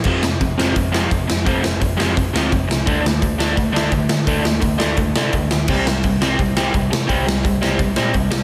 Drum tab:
CC |x-------|--------|--------|--------|
HH |--o-o-o-|o-o-o-o-|o-o-o-o-|o-o-o-o-|
SD |-o-o-o-o|-o-o-o-o|-o-o-o-o|-o-o-o-o|
BD |o-o-o-o-|o-o-o-o-|o-o-o-o-|o-o-o-o-|

CC |x-------|--------|
HH |--o-o-o-|o-o-o-o-|
SD |-o-o-o-o|-o-o-o-o|
BD |o-o-o-o-|o-o-o-o-|